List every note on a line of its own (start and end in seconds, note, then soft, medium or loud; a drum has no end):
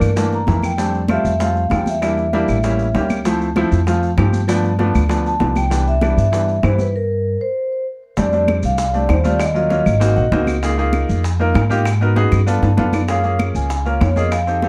0.00 0.44 G2 medium
0.00 0.36 A#4 medium
0.00 high bongo soft
0.00 high conga soft
0.00 claves medium
0.00 maracas medium
0.16 0.38 E3 medium
0.16 0.38 A3 medium
0.16 0.39 A#3 medium
0.16 0.39 D4 medium
0.16 high bongo medium
0.16 high conga soft
0.16 maracas medium
0.32 0.62 A#5 loud
0.32 high bongo soft
0.32 high conga soft
0.32 maracas soft
0.47 1.19 F2 medium
0.47 0.69 E3 medium
0.47 0.69 A3 medium
0.47 0.70 A#3 medium
0.47 0.70 E4 medium
0.47 high bongo medium
0.47 low bongo medium
0.47 high conga medium
0.47 maracas soft
0.63 0.93 G5 loud
0.63 high conga medium
0.63 claves medium
0.63 maracas medium
0.78 1.00 G3 medium
0.78 1.00 A3 medium
0.78 1.00 C4 medium
0.78 1.00 D4 medium
0.78 high bongo medium
0.78 maracas medium
0.94 high conga soft
0.94 maracas soft
1.08 1.31 G3 medium
1.08 1.31 A3 medium
1.08 1.31 C4 medium
1.08 1.31 F4 medium
1.08 1.42 E5 medium
1.08 high bongo medium
1.08 high conga medium
1.08 claves medium
1.08 maracas soft
1.24 1.68 F2 medium
1.24 high conga soft
1.24 maracas medium
1.39 1.61 G3 medium
1.39 1.62 A3 medium
1.39 1.62 C4 medium
1.39 1.62 F4 medium
1.39 1.73 F5 loud
1.39 high bongo medium
1.39 high conga soft
1.39 maracas medium
1.55 high conga soft
1.55 maracas soft
1.70 2.43 E2 medium
1.70 1.92 G3 medium
1.70 1.92 A3 medium
1.70 1.93 C4 medium
1.70 1.93 F4 medium
1.70 1.88 G5 medium
1.70 high bongo medium
1.70 low bongo medium
1.70 high conga medium
1.70 claves medium
1.70 maracas soft
1.86 3.07 E5 medium
1.86 high conga medium
1.86 maracas medium
2.02 2.23 G3 medium
2.02 2.24 A#3 medium
2.02 2.24 D4 medium
2.02 2.24 E4 medium
2.02 high bongo medium
2.02 high conga soft
2.02 claves medium
2.02 maracas medium
2.18 high bongo soft
2.18 high conga soft
2.18 maracas soft
2.33 2.55 G3 loud
2.33 2.55 A#3 medium
2.33 2.55 D4 medium
2.33 2.55 E4 loud
2.33 high bongo medium
2.33 high conga medium
2.33 maracas soft
2.48 2.91 A1 medium
2.48 high bongo soft
2.48 high conga soft
2.48 claves medium
2.48 maracas medium
2.63 2.85 G3 medium
2.63 2.85 A#3 medium
2.63 2.86 C#4 medium
2.63 2.86 E4 medium
2.63 high bongo medium
2.63 high conga soft
2.63 maracas medium
2.79 high bongo soft
2.79 high conga soft
2.79 maracas soft
2.95 3.66 D2 medium
2.95 3.16 G3 medium
2.95 3.16 A#3 medium
2.95 3.17 C#4 medium
2.95 3.17 G4 medium
2.95 high bongo medium
2.95 low bongo medium
2.95 high conga medium
2.95 maracas soft
3.10 high conga medium
3.10 claves medium
3.10 maracas medium
3.25 3.47 F3 medium
3.25 3.47 A3 medium
3.25 3.47 C4 medium
3.25 3.47 E4 medium
3.25 high bongo medium
3.25 high conga soft
3.25 maracas medium
3.41 high conga soft
3.41 maracas soft
3.56 3.78 F3 loud
3.56 3.78 A3 medium
3.56 3.78 C4 medium
3.56 3.78 E4 loud
3.56 high bongo medium
3.56 high conga medium
3.56 claves medium
3.56 maracas soft
3.71 4.15 F2 medium
3.71 high conga soft
3.71 maracas medium
3.87 4.08 F3 medium
3.87 4.09 A3 medium
3.87 4.09 C4 medium
3.87 4.09 F4 medium
3.87 high bongo medium
3.87 high conga soft
3.87 maracas medium
4.03 high conga soft
4.03 maracas soft
4.17 4.89 G2 medium
4.17 4.39 F3 medium
4.17 4.39 A3 medium
4.17 4.39 C4 medium
4.17 4.40 G4 medium
4.17 high bongo medium
4.17 low bongo medium
4.17 high conga medium
4.17 claves medium
4.17 maracas soft
4.33 high conga medium
4.33 maracas medium
4.48 4.70 F3 loud
4.48 4.70 A3 medium
4.48 4.70 B3 medium
4.48 4.70 D4 loud
4.48 high bongo medium
4.48 high conga soft
4.48 claves medium
4.48 maracas medium
4.64 high bongo soft
4.64 high conga soft
4.79 5.00 F3 medium
4.79 5.01 A3 medium
4.79 5.01 B3 medium
4.79 5.01 D4 loud
4.79 high bongo medium
4.79 high conga medium
4.79 maracas soft
4.94 5.38 D2 medium
4.94 high bongo soft
4.94 high conga soft
4.94 claves medium
4.94 maracas medium
5.09 5.31 F3 medium
5.09 5.31 A3 medium
5.09 5.31 B3 medium
5.09 5.32 D4 medium
5.09 high bongo medium
5.09 high conga soft
5.09 maracas medium
5.25 5.58 A5 loud
5.25 high bongo soft
5.25 high conga soft
5.25 maracas soft
5.40 6.12 C2 medium
5.40 5.62 F3 medium
5.40 5.62 A3 medium
5.40 5.62 B3 medium
5.40 5.62 D4 medium
5.40 high bongo medium
5.40 low bongo medium
5.40 high conga medium
5.40 maracas soft
5.56 5.85 G5 loud
5.56 high conga medium
5.56 claves medium
5.56 maracas medium
5.70 5.92 E3 medium
5.70 5.93 G3 medium
5.70 5.93 B3 medium
5.70 5.93 D4 medium
5.70 high bongo medium
5.70 maracas medium
5.86 6.18 E5 loud
5.86 high conga soft
5.86 maracas soft
6.01 6.23 E3 medium
6.01 6.24 G3 medium
6.01 6.24 B3 medium
6.01 6.24 D4 medium
6.01 high bongo soft
6.01 high conga medium
6.01 claves medium
6.01 maracas soft
6.17 6.60 G2 medium
6.17 6.61 E5 medium
6.17 high conga soft
6.17 maracas medium
6.32 6.54 E3 medium
6.32 6.54 G3 medium
6.32 6.54 B3 medium
6.32 6.55 D4 medium
6.32 high bongo medium
6.32 high conga soft
6.32 maracas medium
6.48 high conga soft
6.48 maracas soft
6.63 7.35 G2 medium
6.63 6.85 E3 medium
6.63 6.85 G3 medium
6.63 6.85 B3 medium
6.63 6.86 E4 medium
6.63 6.80 C5 medium
6.63 high bongo medium
6.63 low bongo medium
6.63 high conga medium
6.63 claves medium
6.63 maracas soft
6.78 6.87 B4 medium
6.78 high conga medium
6.78 maracas medium
6.96 7.43 A#4 medium
7.41 7.84 C5 medium
8.17 8.60 F2 medium
8.17 8.28 G3 medium
8.17 8.28 A3 medium
8.17 8.28 C4 medium
8.17 8.29 D4 medium
8.17 8.47 D5 loud
8.17 high bongo medium
8.17 high conga soft
8.17 maracas medium
8.33 8.76 G3 medium
8.33 8.76 A3 medium
8.33 8.76 C4 medium
8.33 8.76 D4 medium
8.33 high conga soft
8.33 maracas soft
8.48 high bongo medium
8.48 high conga medium
8.48 claves medium
8.48 maracas soft
8.63 9.06 C2 medium
8.63 8.96 F5 loud
8.63 high conga soft
8.63 maracas medium
8.78 high bongo medium
8.78 high conga soft
8.78 maracas medium
8.93 9.15 G3 medium
8.93 9.15 A3 medium
8.93 9.16 C4 medium
8.93 9.16 D4 medium
8.93 9.09 D5 medium
8.93 high conga soft
8.93 maracas soft
9.09 9.81 D#2 medium
9.09 9.25 C5 medium
9.09 high bongo medium
9.09 low bongo medium
9.09 high conga medium
9.09 claves medium
9.09 maracas soft
9.24 9.40 G3 medium
9.24 9.40 A3 medium
9.24 9.40 C4 medium
9.24 9.40 F4 medium
9.24 9.41 D5 medium
9.24 high conga medium
9.24 maracas medium
9.40 high bongo medium
9.40 high conga soft
9.40 claves medium
9.40 maracas medium
9.54 9.66 F#3 medium
9.54 9.66 A#3 medium
9.54 9.66 C#4 medium
9.54 9.66 F4 medium
9.54 10.44 D#5 medium
9.54 high bongo soft
9.54 high conga soft
9.54 maracas soft
9.69 9.92 F#3 medium
9.69 9.92 A#3 medium
9.69 9.92 C#4 medium
9.69 9.92 F4 medium
9.69 high bongo medium
9.69 high conga medium
9.69 maracas soft
9.86 10.15 G#1 medium
9.86 high bongo soft
9.86 high conga soft
9.86 claves medium
9.86 maracas medium
10.00 10.22 A#3 medium
10.00 10.23 C4 medium
10.00 10.23 D#4 medium
10.00 10.23 F#4 loud
10.00 high bongo medium
10.00 high conga soft
10.00 maracas medium
10.16 10.31 A#1 medium
10.16 10.31 F#5 medium
10.16 high bongo soft
10.16 high conga soft
10.16 maracas soft
10.32 11.03 C#2 medium
10.32 10.54 A#3 medium
10.32 10.54 C4 medium
10.32 10.54 D#4 medium
10.32 10.54 F#4 medium
10.32 10.61 D#5 medium
10.32 high bongo medium
10.32 low bongo medium
10.32 high conga medium
10.32 maracas soft
10.47 high conga medium
10.47 claves medium
10.47 maracas medium
10.63 10.74 A#3 medium
10.63 10.74 D#4 medium
10.63 10.74 F4 medium
10.63 10.75 G#4 loud
10.63 high bongo medium
10.63 high conga soft
10.63 maracas medium
10.78 11.21 A#3 medium
10.78 11.21 D#4 medium
10.78 11.21 F4 medium
10.78 11.22 G#4 medium
10.78 high conga soft
10.78 maracas soft
10.93 high bongo soft
10.93 high conga medium
10.93 claves medium
10.93 maracas soft
11.08 11.52 F2 medium
11.08 high conga soft
11.08 maracas medium
11.24 high bongo medium
11.24 high conga soft
11.24 maracas medium
11.39 11.61 A#3 medium
11.39 11.61 D#4 medium
11.39 11.62 F4 medium
11.39 11.62 A#4 loud
11.39 high conga soft
11.39 maracas soft
11.54 12.27 G#2 medium
11.54 high bongo medium
11.54 low bongo medium
11.54 high conga medium
11.54 claves medium
11.54 maracas soft
11.70 11.85 A#3 medium
11.70 11.86 D#4 medium
11.70 11.86 F4 medium
11.70 11.86 G4 loud
11.70 high conga medium
11.70 maracas medium
11.85 high bongo medium
11.85 high conga soft
11.85 claves medium
11.85 maracas medium
12.01 12.12 B3 medium
12.01 12.12 D#4 medium
12.01 12.12 F#4 medium
12.01 12.13 A#4 loud
12.01 high bongo soft
12.01 high conga soft
12.01 maracas soft
12.16 12.38 B3 medium
12.16 12.38 D#4 medium
12.16 12.38 F#4 medium
12.16 12.38 G#4 loud
12.16 high bongo medium
12.16 high conga medium
12.16 maracas soft
12.32 12.61 G2 medium
12.32 high bongo medium
12.32 high conga soft
12.32 claves medium
12.32 maracas medium
12.47 12.69 B3 medium
12.47 12.69 D4 medium
12.47 12.69 F4 medium
12.47 12.69 A4 loud
12.47 high conga soft
12.47 maracas medium
12.62 12.77 G2 medium
12.62 12.77 A5 medium
12.62 low bongo medium
12.62 high conga soft
12.62 maracas soft
12.77 13.50 F#2 medium
12.77 12.99 B3 medium
12.77 13.00 D4 medium
12.77 13.00 F4 medium
12.77 13.00 A4 loud
12.77 12.93 F5 medium
12.77 low bongo medium
12.77 high conga medium
12.77 maracas soft
12.93 13.08 D5 medium
12.93 low bongo medium
12.93 high conga medium
12.93 claves medium
12.93 maracas medium
13.08 13.20 A#3 medium
13.08 13.20 C#4 medium
13.08 13.20 F4 medium
13.08 13.20 G#4 medium
13.08 13.38 F5 loud
13.08 high bongo medium
13.08 maracas medium
13.23 13.67 A#3 medium
13.23 13.67 C#4 medium
13.23 13.67 F4 medium
13.23 13.68 G#4 medium
13.23 high conga soft
13.23 maracas soft
13.39 high bongo medium
13.39 high conga medium
13.39 claves medium
13.39 maracas soft
13.55 13.98 C#2 medium
13.55 13.84 G#5 loud
13.55 high conga soft
13.55 maracas medium
13.70 high bongo medium
13.70 high conga soft
13.70 maracas medium
13.85 14.07 A#3 medium
13.85 14.07 C#4 medium
13.85 14.08 F4 medium
13.85 14.08 A#4 medium
13.85 14.02 F5 medium
13.85 high conga soft
13.85 maracas soft
14.01 14.69 F2 medium
14.01 14.16 C#5 medium
14.01 high bongo medium
14.01 low bongo medium
14.01 high conga medium
14.01 claves medium
14.01 maracas soft
14.16 14.32 A#3 medium
14.16 14.32 C#4 medium
14.16 14.32 F4 medium
14.16 14.32 G#4 medium
14.16 14.31 D#5 medium
14.16 high conga medium
14.16 maracas medium
14.32 14.46 F5 loud
14.32 high bongo medium
14.32 high conga soft
14.32 claves medium
14.32 maracas medium
14.47 14.58 C4 medium
14.47 14.58 D#4 medium
14.47 14.59 G4 medium
14.47 14.59 A4 medium
14.47 14.69 F5 loud
14.47 high bongo soft
14.47 high conga soft
14.47 maracas soft
14.62 14.69 C4 medium
14.62 14.69 D#4 medium
14.62 14.69 G4 medium
14.62 14.69 A4 medium
14.62 high bongo medium
14.62 high conga medium
14.62 maracas soft